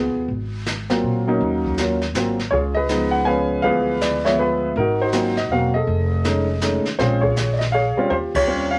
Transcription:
Already playing: upright bass C#2, upright piano B3 F4 G#4
0.14 upright bass D#2
0.28 upright bass G#1, brush sweep, kick
0.66 snare, hi-hat pedal
0.90 upright piano F#3 A#3 C4 F4, snare
1.03 upright bass A#2
1.27 upright piano F#3 A#3 C#4 D#4
1.40 upright bass D#2, brush sweep, kick
1.65 kick
1.78 upright piano F#3 A#3 C#4 F4, snare, hi-hat pedal
2.02 snare
2.14 upright bass G#1, upright piano F#3 A#3 C4 F4, snare, hi-hat pedal
2.39 snare
2.51 upright bass C#2, upright piano F4 G#4 C#5, brush sweep, kick
2.75 upright piano G#4 B4 D#5
2.89 upright piano F3 G#3 B3 D#4, snare, hi-hat pedal
3.11 upright piano F#5
3.25 upright piano F3 G#3 B3 C#4 B4 F5 G#5
3.62 upright bass D2, upright piano E3 F3 G#3 B3 G#4 B4 F5, brush sweep, kick
4.01 upright piano D5, snare, hi-hat pedal
4.25 upright piano F3 G#3 B3 C#5 E5, snare
4.39 upright piano F4 G#4 B4
4.76 upright bass G#1, upright piano D#4 F#4 A#4, brush sweep, kick
5.01 upright piano D#4 F#4 C5
5.12 upright piano F#3 A#3 C4 F4, snare, hi-hat pedal
5.37 upright piano D#5, snare
5.49 upright bass E1, upright piano F#3 A#3 C4 F#4 F5
5.74 upright piano G#4 A4 D#5
5.87 upright bass F1, brush sweep, kick
6.24 upright piano G#3 A3 C#4 D#4, snare, hi-hat pedal
6.61 upright piano G#3 A3 C#4 D#4, snare, hi-hat pedal
6.85 muted upright bass stroke, snare
6.99 upright bass A#1, upright piano G#3 C4 C#4 F4 G#4 C5, brush sweep, kick, snare
7.21 upright piano F4 G#4 C#5, kick
7.36 snare, hi-hat pedal
7.53 upright piano D5
7.59 upright piano D#5, snare
7.72 upright piano G#4 C#5 F5
7.96 upright piano G3 C4 C#4 F4, muted upright bass stroke
8.10 upright bass D#2, upright piano F4 G4 C5, brush sweep, kick
8.35 upright piano F4 G4 C#5, kick, ride
8.47 upright piano G3 C4 C#4 F4
8.71 upright piano F5

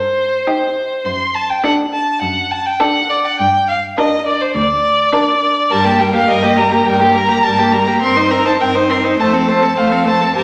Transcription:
Already playing: cello G2, violin C5
0.47 viola D#4, violin G4
1.05 cello F#2, violin C6
1.35 violin A5
1.50 violin G5
1.64 viola D4, violin A4 F#5
1.93 violin A5
2.22 cello F#2, violin F#5
2.51 violin A5
2.66 violin G5
2.80 viola D4, violin A4 F#5
3.10 violin D5
3.25 violin F#5
3.39 cello G2, violin G5
3.69 violin F5
3.97 viola D4, violin A#4 D#5
4.26 violin D5
4.41 violin C5
4.55 cello D2, violin D5
5.13 viola D4, violin A#4
5.70 cello G2, viola G3, violin A#4 A5
5.85 viola A#3, violin G4
5.99 viola G3, violin A#4 G5
6.14 viola A#3, violin G4 F5
6.28 cello G2, viola G3, violin A#4 D#5
6.43 viola A#3, violin G4
6.57 viola G3, violin A#4 A#5
6.72 viola A#3, violin G4
6.85 cello G2, viola G3, violin A#4 G5
7.00 viola A#3, violin G4
7.14 viola G3, violin A#4 A#5
7.29 viola A#3, violin G4
7.43 cello G2, viola G3, violin A#4 A5
7.58 viola A#3, violin G4
7.72 viola G3, violin A#4 A#5
7.86 viola A#3, violin G4
8.01 cello G2, viola C4, violin A#4 C6
8.16 viola D#4, violin C5
8.31 viola C4, violin A#4 A#5
8.45 viola D#4, violin C5 A5
8.59 cello G2, viola C4, violin A#4 G5
8.75 viola D#4, violin C5
8.90 viola C4, violin A#4 C6
9.04 viola D#4, violin C5
9.19 cello F2, viola A3, violin C5 A5
9.33 viola C4, violin A4
9.47 viola A3, violin C5 A5
9.62 viola C4, violin A4
9.77 cello F2, viola A3, violin C5 F5
9.91 viola C4, violin A4
10.06 viola A3, violin C5 A5
10.21 viola C4, violin A4
10.35 cello G2, viola G4, violin A#4 A5

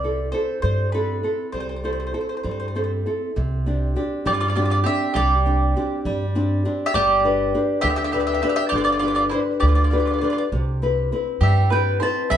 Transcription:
Already playing: upright bass C2, nylon-string guitar C3, mandolin D5
0.03 nylon-string guitar C4 E4 A4
0.32 nylon-string guitar C4 E4 A4, mandolin C5
0.62 upright bass G2, nylon-string guitar G3, mandolin C5
0.92 nylon-string guitar C4 E4 A4, mandolin B4
1.23 nylon-string guitar C4 E4 A4
1.52 upright bass C2, nylon-string guitar G3, mandolin C5
1.60 mandolin C5
1.69 mandolin C5
1.76 mandolin C5
1.84 nylon-string guitar C4 E4 A4, mandolin C5
1.93 mandolin C5
2.00 mandolin C5
2.07 mandolin C5
2.13 nylon-string guitar C4 E4 A4, mandolin C5
2.21 mandolin C5
2.29 mandolin C5
2.37 mandolin C5
2.43 upright bass G2, nylon-string guitar G3, mandolin C5
2.51 mandolin C5
2.60 mandolin C5
2.68 mandolin C5
2.75 nylon-string guitar C4 E4 A4, mandolin C5
2.84 mandolin C5
3.06 nylon-string guitar C4 E4 A4
3.36 upright bass C2, nylon-string guitar C3
3.66 nylon-string guitar C4 D4 G4
3.95 nylon-string guitar C4 D4 G4
4.25 upright bass G2, nylon-string guitar G3, mandolin G4 D5
4.33 mandolin F4 D5
4.40 mandolin F4 D5
4.48 mandolin F4 D5
4.55 nylon-string guitar C4 D4 G4, mandolin F4 D5
4.62 mandolin F4 D5
4.70 mandolin F4 D5
4.84 nylon-string guitar C4 D4 G4, mandolin G4 E5
5.14 upright bass C2, nylon-string guitar G3, mandolin G4 D5
5.45 nylon-string guitar C4 D4 G4
5.76 nylon-string guitar C4 D4 G4
6.05 upright bass G2, nylon-string guitar G3
6.35 nylon-string guitar C4 D4 G4
6.65 nylon-string guitar C4 D4 G4
6.86 mandolin G4 E5
6.94 upright bass G1, nylon-string guitar G3, mandolin G4 D5
7.24 nylon-string guitar D4 G4 B4
7.54 nylon-string guitar D4 G4 B4
7.81 upright bass D2, nylon-string guitar D3, mandolin G4 E5
7.89 mandolin G4 E5
7.96 mandolin G4 E5
8.04 mandolin G4 E5
8.12 nylon-string guitar D4 G4 B4, mandolin G4 E5
8.20 mandolin G4 E5
8.27 mandolin G4 E5
8.33 mandolin G4 E5
8.42 nylon-string guitar D4 G4 B4, mandolin G4 E5
8.49 mandolin G4 E5
8.56 mandolin G4 E5
8.69 upright bass G1, mandolin G4 D5
8.73 nylon-string guitar D3, mandolin F4
8.78 mandolin D5
8.84 mandolin F4 D5
8.92 mandolin F4 D5
8.99 nylon-string guitar D4 G4 B4, mandolin F4 D5
9.07 mandolin F4 D5
9.15 mandolin F4 D5
9.29 nylon-string guitar D4 G4, mandolin E4 C5
9.34 nylon-string guitar B4
9.60 upright bass D2, nylon-string guitar D3, mandolin G4 D5
9.68 mandolin F4
9.75 mandolin F4 D5
9.84 mandolin F4 D5
9.90 nylon-string guitar D4 G4 B4, mandolin F4 D5
9.98 mandolin F4 D5
10.05 mandolin F4 D5
10.11 mandolin F4 D5
10.18 nylon-string guitar D4 G4, mandolin F4 D5
10.23 mandolin F4, nylon-string guitar B4
10.30 mandolin F4 D5
10.38 mandolin D5
10.52 upright bass C2, nylon-string guitar C3
10.82 nylon-string guitar C4 E4 B4
11.12 nylon-string guitar C4 E4 B4
11.41 upright bass G2, nylon-string guitar G3, mandolin G4 E5
11.70 nylon-string guitar C4 E4 B4, mandolin B4 G5
12.00 nylon-string guitar C4 E4 B4, mandolin C5 A5
12.30 upright bass C2, nylon-string guitar G3, mandolin E5 B5

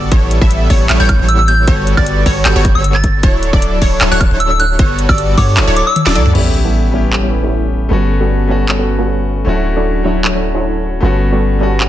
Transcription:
0.12 808-style bass A1, supersaw synth G3 B3 E4 A4 C#5, synth pluck C#5, kick, closed hi-hat
0.31 closed hi-hat
0.41 808-style bass A1, supersaw synth G3 B3 E4 A4 E5, synth pluck E5, kick
0.51 closed hi-hat
0.70 808-style bass A1, supersaw synth G3 B3 E4 A4 C#5, synth pluck C#5, kick, open hi-hat
0.90 808-style bass A1, supersaw synth G3 B3 E4 A4 C#5, synth pluck C#5, clap, closed hi-hat, high woodblock
1.00 808-style bass A1, supersaw synth G3 B3 E4 A4 C#5, synth pluck C#5, synth bell G6
1.09 kick, closed hi-hat, high woodblock
1.19 808-style bass A1, supersaw synth G3 B3 E4 A4 C#5, synth pluck C#5
1.28 synth bell E6, closed hi-hat
1.39 synth bell E6
1.48 synth bell G6, closed hi-hat
1.68 808-style bass G1, supersaw synth G3 B3 F#4 A4 C#5, synth pluck C#5, kick, closed hi-hat
1.87 closed hi-hat
1.97 808-style bass G1, supersaw synth G3 B3 F#4, synth pluck D5, synth bell A6, kick, high woodblock
2.07 closed hi-hat
2.26 808-style bass G1, supersaw synth G3 B3 F#4 A4 C#5, synth pluck C#5, kick, open hi-hat
2.45 808-style bass G1, supersaw synth G3 B3 F#4 A4 C#5, synth pluck C#5, synth bell G6, clap, closed hi-hat
2.56 808-style bass G1, supersaw synth G3 B3 F#4 A4 C#5, synth pluck C#5
2.65 kick, closed hi-hat
2.75 808-style bass G1, supersaw synth G3 B3 F#4 A4 C#5, synth pluck C#5, synth bell E6
2.84 closed hi-hat
2.95 synth bell A6, clap
3.04 kick, closed hi-hat
3.23 supersaw synth F#3 D4 E4 A4 C#5, synth pluck C#5, kick, closed hi-hat
3.43 closed hi-hat
3.53 808-style bass D1, supersaw synth F#3 D4 E4 A4 D5, synth pluck D5, kick
3.62 closed hi-hat
3.82 808-style bass D1, supersaw synth F#3 D4 E4 A4 C#5, synth pluck C#5, kick, open hi-hat
4.01 808-style bass D1, supersaw synth F#3 D4 E4 A4 C#5, synth pluck C#5, clap, closed hi-hat, high woodblock
4.11 808-style bass D1, supersaw synth F#3 D4 E4 A4 C#5, synth pluck C#5, synth bell F#6
4.21 kick, closed hi-hat, high woodblock
4.31 808-style bass D1, supersaw synth F#3 D4 E4 A4 C#5, synth pluck C#5
4.40 synth bell E6, closed hi-hat
4.50 synth bell E6
4.60 synth bell F#6, closed hi-hat
4.79 808-style bass G1, supersaw synth G3 B3 F#4 A4 C#5, synth pluck C#5, kick, closed hi-hat
4.99 closed hi-hat
5.09 808-style bass G1, supersaw synth G3 F#4 A4 D5, synth pluck D5, synth bell E6, kick, high woodblock
5.18 closed hi-hat
5.38 808-style bass G2, supersaw synth G3 B3 F#4 A4 C#5, synth pluck C#5, synth bell D6, kick, open hi-hat
5.57 808-style bass D1, supersaw synth F#3 D4 E4 A4 C#5, synth pluck C#5, clap, closed hi-hat
5.67 808-style bass D1, supersaw synth F#3 D4 E4 A4 C#5, synth pluck C#5
5.77 synth bell D6, closed hi-hat
5.87 synth bell E6
5.96 closed hi-hat, high tom
6.06 808-style bass D1, supersaw synth F#3 D4 E4 A4 D5, synth pluck D5, snare, clap
6.15 808-style bass D2, supersaw synth F#3 D4 E4 A4 D5, synth pluck D5, closed hi-hat
6.26 mid tom
6.33 808-style bass A1, supersaw synth G3 B3 E4 A4 C#5, grand piano B3 C#4 E4, crash, sub drop
6.37 grand piano G4
6.65 supersaw synth G3 B3 E4 A4 E5
6.91 supersaw synth G3 B3 E4 A4 C#5, grand piano B3 C#4 E4
6.95 grand piano G4
7.13 supersaw synth G3 B3 E4 A4 C#5, clap
7.23 supersaw synth G3 B3 E4 A4 C#5
7.43 supersaw synth G3 B3 E4 A4 C#5
7.89 808-style bass G1, supersaw synth G3 B3 F#4 A4 C#5, grand piano A3 B3 C#4
7.93 grand piano F#4
8.21 supersaw synth G3 B3 F#4 A4 D5
8.47 supersaw synth G3 B3 F#4 A4 C#5, grand piano A3 B3 C#4
8.51 grand piano F#4
8.69 supersaw synth G3 B3 F#4 A4 C#5, clap
8.79 supersaw synth G3 B3 F#4 A4 C#5
8.99 supersaw synth G3 B3 F#4 A4 C#5
9.45 808-style bass D1, supersaw synth F#3 D4 E4 A4 C#5, grand piano A3 C#4 E4 F#4
9.77 supersaw synth F#3 D4 E4 A4 D5
10.03 supersaw synth F#3 D4 E4 A4 C#5, grand piano A3 E4 F#4 C#5
10.25 supersaw synth F#3 D4 E4 A4 C#5, clap
10.35 supersaw synth F#3 D4 E4 A4 C#5
10.54 supersaw synth F#3 D4 E4 A4 C#5
11.00 808-style bass G1, supersaw synth G3 B3 F#4 A4 C#5, grand piano A3 B3 C#4
11.04 grand piano F#4
11.32 supersaw synth G3 B3 F#4 A4 D5
11.59 supersaw synth G3 B3 F#4 A4 C#5, grand piano A3 B3 C#4
11.63 grand piano F#4
11.80 supersaw synth G3 B3 F#4 A4 C#5, clap

